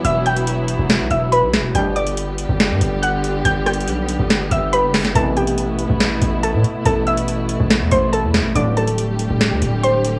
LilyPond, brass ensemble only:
\new Staff \with { instrumentName = "Brass ensemble" } { \clef bass \time 4/4 \key a \dorian \tempo 4 = 141 r1 | <d, b, g>8. r2. r16 | r1 | <c, b, e>8. r2. r16 |
r1 | <a,, g, d>8. r2. r16 | }